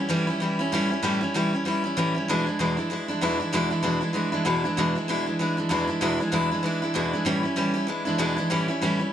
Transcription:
0.09 A2 E3 G3 C#4 E4
0.27 G3 C#4 E4
0.40 E3 G3 C#4 E4
0.59 G3 C#4 E4
0.72 A2 E3 G3 C#4 E4
0.90 G3 C#4 E4
1.03 A2 E3 G3 C#4 E4
1.21 G3 C#4 E4
1.34 A2 E3 G3 C#4 E4
1.53 G3 C#4 E4
1.65 E3 G3 C#4 E4
1.84 G3 C#4 E4
1.97 A2 E3 G3 C#4 E4
2.15 G3 C#4 E4
2.28 E2 B2 E3 G#3 D4 E4
2.46 E3 G#3 D4 E4
2.59 E2 B2 E3 G#3 D4 E4
2.77 E3 G#3 D4 E4
2.90 E3 G#3 D4 E4
3.08 E3 G#3 D4 E4
3.21 E2 B2 E3 G#3 D4 E4
3.40 E3 G#3 D4 E4
3.53 E2 B2 E3 G#3 D4 E4
3.70 E3 G#3 D4 E4
3.83 E2 B2 E3 G#3 D4 E4
4.01 E3 G#3 D4 E4
4.13 E3 G#3 D4 E4
4.32 E3 G#3 D4 E4
4.45 E2 B2 E3 G#3 D4 E4
4.64 E3 G#3 D4 E4
4.77 E2 B2 E3 G#3 D4 E4
4.95 E3 G#3 D4 E4
5.08 E2 B2 E3 G#3 D4 E4
5.26 E3 G#3 D4 E4
5.39 E3 G#3 D4 E4
5.57 E3 G#3 D4 E4
5.69 E2 B2 E3 G#3 D4 E4
5.87 E3 G#3 D4 E4
6.01 E2 B2 E3 G#3 D4 E4
6.20 E3 G#3 D4 E4
6.32 E2 B2 E3 G#3 D4 E4
6.51 E3 G#3 D4 E4
6.63 E3 G#3 D4 E4
6.82 E3 G#3 D4 E4
6.94 E2 B2 E3 G#3 D4 E4
7.13 E3 G#3 D4 E4
7.25 A2 E3 G3 C#4 E4
7.43 G3 C#4 E4
7.56 A2 E3 G3 C#4 E4
7.74 G3 C#4 E4
7.87 E3 G#3 D4 E4
8.05 E3 G#3 D4 E4
8.18 E2 B2 E3 G#3 D4 E4
8.36 E3 G#3 D4 E4
8.50 A2 E3 G3 C#4 E4
8.68 G3 C#4 E4
8.82 A2 E3 G3 C#4 E4
8.99 G3 C#4 E4

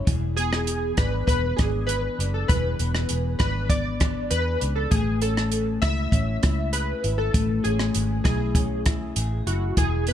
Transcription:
Already playing: G#3 C#4
0.07 E1 E3 G#4, kick, closed hi-hat
0.36 B3 G#4, closed hi-hat
0.53 cross-stick
0.67 G#4, closed hi-hat
0.97 G#1 D4 B4, kick, cross-stick, closed hi-hat
1.27 E1 B3 B4, kick, closed hi-hat
1.57 G#1 D4 G#4, kick, cross-stick, closed hi-hat
1.87 G#4 B4, closed hi-hat
2.19 F#1 D4, closed hi-hat
2.34 A4
2.48 E1 E3 G#4 B4, kick, closed hi-hat
2.79 E1 B3, closed hi-hat
2.95 cross-stick
3.09 E1 G#4, closed hi-hat
3.39 G#1 D4 B4, kick, cross-stick, closed hi-hat
3.69 B3 D5, kick, closed hi-hat
4.00 D4, kick, cross-stick, closed hi-hat
4.30 E2 G#4 B4, closed hi-hat
4.61 C#2 D4, closed hi-hat
4.76 A4
4.91 A1 A3 G#4, kick, closed hi-hat
5.21 C#4 A4, closed hi-hat
5.37 cross-stick
5.52 closed hi-hat
5.82 C#2 E4 E5, kick, cross-stick, closed hi-hat
6.12 A1 C#4, kick, closed hi-hat
6.42 C#2 E4, kick, cross-stick, closed hi-hat
6.73 G#4 B4, closed hi-hat
7.03 G#1 E4, closed hi-hat
7.18 A4
7.33 A1 A3, kick, closed hi-hat
7.64 A1 C#4 G#4, closed hi-hat
7.79 cross-stick
7.94 G#1 G#4, closed hi-hat
8.24 B1 E4 G#4, kick, cross-stick, closed hi-hat
8.55 C#4, kick, closed hi-hat
8.86 E4, kick, cross-stick, closed hi-hat
9.16 A1 G#4, closed hi-hat
9.47 F#1 E4 F#4, closed hi-hat
9.77 E1 E3 G#4, kick, closed hi-hat
10.07 B3 B4, closed hi-hat

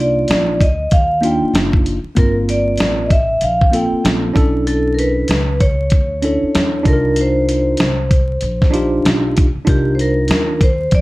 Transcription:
Already playing: C2 A#3 D4 D#4 F4
0.00 D5
0.28 A#1, snare, closed hi-hat
0.60 D2 D#5, kick, closed hi-hat
0.91 D#2 F5, kick, closed hi-hat
1.21 A#3 D4 D#4 F4, closed hi-hat
1.26 G5
1.42 muted upright bass stroke
1.53 F#1, snare, closed hi-hat
1.73 kick
1.86 closed hi-hat
2.04 muted upright bass stroke
2.15 G1 A#3 C4 F4 A#4, kick, closed hi-hat
2.49 D5, closed hi-hat
2.77 A1, snare, closed hi-hat
3.06 D#5
3.10 E5, kick, closed hi-hat
3.41 A#1 F5, closed hi-hat
3.61 kick
3.71 A#3 C4 F4 A4 G5, closed hi-hat
3.92 muted upright bass stroke
4.04 A#1, snare, closed hi-hat
4.33 B1 C#4 D4 E4 A4, kick, closed hi-hat
4.67 A4, closed hi-hat
4.95 A#4
4.99 B4, closed hi-hat
5.28 C#2, snare, closed hi-hat
5.60 C#5, kick, closed hi-hat
5.90 D2, kick, closed hi-hat
6.22 C#4 D4 E4 A4 C#5, closed hi-hat
6.43 muted upright bass stroke
6.55 E2, snare, closed hi-hat
6.83 C2 D4 D#4 F4 A4, kick, closed hi-hat
6.88 A#4
6.93 A#4
7.16 closed hi-hat
7.21 C5
7.49 closed hi-hat
7.77 C2, snare, closed hi-hat
8.11 kick, closed hi-hat
8.41 A#1, closed hi-hat
8.62 kick, snare
8.71 D4 D#4 F4 G4, closed hi-hat
9.05 B1, snare, closed hi-hat
9.37 kick, closed hi-hat
9.55 muted upright bass stroke
9.65 C2 D4 D#4 F4 A#4, kick, closed hi-hat
9.69 G4
9.95 C5
9.99 A#4, closed hi-hat
10.28 D#2, snare, closed hi-hat
10.61 C5, kick, closed hi-hat
10.91 F2 D5, kick, closed hi-hat

